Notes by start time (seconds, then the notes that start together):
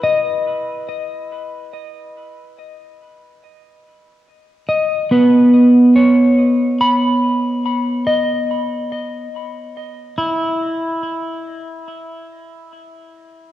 Already playing: E4 B4
0.04 D#5
4.68 D#5
5.11 B3 B4
5.96 C#5
6.81 B5
8.07 D#5
10.18 E4